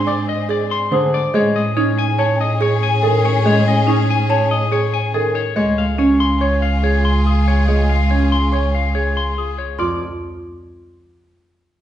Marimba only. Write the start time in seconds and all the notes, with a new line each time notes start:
0.07 D5
0.49 G#4
0.92 C5
1.34 G#4
1.77 D#4
2.19 C#5
2.61 G#4
3.03 A4
3.45 G#4
3.87 D#4
4.30 C#5
4.72 G#4
5.14 A4
5.56 G#4
5.98 C#4
6.41 C#5
6.83 G#4
7.68 G#4
8.10 C#4
8.52 C#5
8.95 G#4
9.79 F4